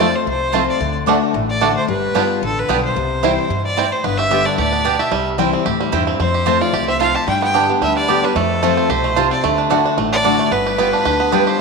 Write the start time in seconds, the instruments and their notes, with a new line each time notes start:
Already playing: upright bass F2, steel-string acoustic guitar F2, fiddle D5
0.00 steel-string acoustic guitar F3 A3 C4 F4, five-string banjo C4 F4
0.15 fiddle C5
0.26 upright bass C2, steel-string acoustic guitar C3, fiddle C5
0.52 steel-string acoustic guitar F3 A3 C4 F4, five-string banjo A3 C4 F4, mandolin C4 F4 C5 A5
0.69 fiddle D5
0.80 upright bass D2, steel-string acoustic guitar D3
1.06 steel-string acoustic guitar D3 A3 D4 F#4, mandolin A3 F#4 D5 F#5, five-string banjo A3 D4
1.34 upright bass A1, steel-string acoustic guitar A2
1.49 fiddle D5
1.61 steel-string acoustic guitar D3 A3 D4 F#4, mandolin A3 F#4 D5 F#5, five-string banjo A3 D4
1.77 fiddle C5
1.88 upright bass G1, steel-string acoustic guitar G3, fiddle B4
2.14 upright bass G1, steel-string acoustic guitar G3 B3 F4, five-string banjo G3 B3 D4, mandolin B3 F4 B4 G5
2.41 upright bass A1, steel-string acoustic guitar D3, fiddle A4
2.59 fiddle B4
2.69 upright bass B1, steel-string acoustic guitar G3 B3 F4, five-string banjo G3 B3 D4, mandolin B3 F4 B4 G5
2.85 fiddle C5
2.95 upright bass C2, steel-string acoustic guitar C3
3.23 steel-string acoustic guitar E3 G3 C4 E4, five-string banjo G3 C4 E4, mandolin C4 E4 C5 G5
3.50 upright bass G2, steel-string acoustic guitar B2
3.65 fiddle D5
3.76 steel-string acoustic guitar A2, five-string banjo G3 C4 E4, mandolin C4 E4 C5 G5
3.92 fiddle C5
4.04 upright bass G1, steel-string acoustic guitar G2, five-string banjo B3, fiddle B4
4.18 five-string banjo G4, fiddle E5
4.31 steel-string acoustic guitar D3 G3 B3 G4, mandolin B3 G4 D5 G5, five-string banjo B3
4.45 five-string banjo D4, fiddle D5
4.58 upright bass D2, steel-string acoustic guitar A2, five-string banjo G4, fiddle D5
4.72 five-string banjo B3
4.85 steel-string acoustic guitar B2, mandolin B3 G4 D5 G5, five-string banjo D4
4.99 five-string banjo G4, fiddle E5
5.11 upright bass C2, steel-string acoustic guitar C3, five-string banjo G3
5.38 steel-string acoustic guitar E3 G3 C4 E4, five-string banjo G3, mandolin C4 E4 C5 G5
5.53 five-string banjo C4
5.66 upright bass D2, steel-string acoustic guitar A2, five-string banjo G4
5.80 five-string banjo G3
5.92 upright bass E2, steel-string acoustic guitar G2, mandolin C4 E4 C5 G5, five-string banjo E4
6.07 five-string banjo C4
6.19 upright bass F2, steel-string acoustic guitar F2, five-string banjo C4, fiddle C5
6.34 five-string banjo G4
6.46 steel-string acoustic guitar F3 A3 C4 F4, mandolin C4 F4 C5 A5, five-string banjo C4
6.61 five-string banjo F4, fiddle D5
6.73 upright bass C2, steel-string acoustic guitar E2, five-string banjo G4
6.88 five-string banjo C4, fiddle E5
7.00 steel-string acoustic guitar F2, mandolin C4 F4 C5 A5, five-string banjo F4, fiddle F5
7.15 five-string banjo G4, fiddle A5
7.27 upright bass G2, steel-string acoustic guitar G2, five-string banjo G3, fiddle G5
7.42 five-string banjo B3, fiddle G5
7.54 steel-string acoustic guitar D3 G3 B3 G4, mandolin B3 G4 D5 G5, five-string banjo D4
7.69 five-string banjo B3, steel-string acoustic guitar B3 G4
7.81 upright bass D2, steel-string acoustic guitar D3, five-string banjo G3, fiddle E5
7.97 five-string banjo D4, fiddle D5
8.08 steel-string acoustic guitar D3 G3 B3 G4, mandolin B3 G4 D5 G5, five-string banjo B3
8.24 five-string banjo G3, steel-string acoustic guitar B3 G4, fiddle B4
8.35 upright bass F2, steel-string acoustic guitar F2, five-string banjo A3, fiddle A4
8.63 steel-string acoustic guitar F3 A3 C4 F4, five-string banjo A3, mandolin C4 F4 C5 A5
8.77 five-string banjo C4
8.89 upright bass C2, steel-string acoustic guitar B2, five-string banjo G4, fiddle C5
9.04 five-string banjo A3
9.16 steel-string acoustic guitar C3, mandolin C4 F4 C5 A5, five-string banjo F4
9.31 five-string banjo C4, fiddle D5
9.44 upright bass D2, steel-string acoustic guitar D3, five-string banjo A3
9.58 five-string banjo D4
9.70 steel-string acoustic guitar D3 A3 D4 F#4, mandolin A3 F#4 D5 F#5, five-string banjo D4
9.86 five-string banjo D4
9.97 upright bass A1, steel-string acoustic guitar A2, five-string banjo A3
10.12 five-string banjo D4, fiddle D5
10.24 steel-string acoustic guitar D3 A3 D4 F#4, mandolin A3 F#4 D5 F#5, five-string banjo D4
10.39 five-string banjo A3
10.51 upright bass G1, steel-string acoustic guitar G3, five-string banjo B3, fiddle B4
10.66 five-string banjo G4
10.78 steel-string acoustic guitar G3 B3 F4, mandolin B3 F4 B4 G5, five-string banjo B3
10.93 five-string banjo D4
11.05 upright bass D2, steel-string acoustic guitar D3, five-string banjo G4
11.20 five-string banjo B3
11.32 steel-string acoustic guitar G3 B3 F4, mandolin B3 F4 B4 G5, five-string banjo D4
11.47 five-string banjo G4, fiddle C5